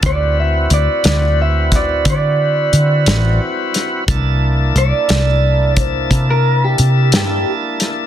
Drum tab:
HH |x-xx-xx-xx-x|x-xx-xx-xx-x|
SD |---o-o---o-o|---o-----o-o|
BD |o----oo-----|o----oo-----|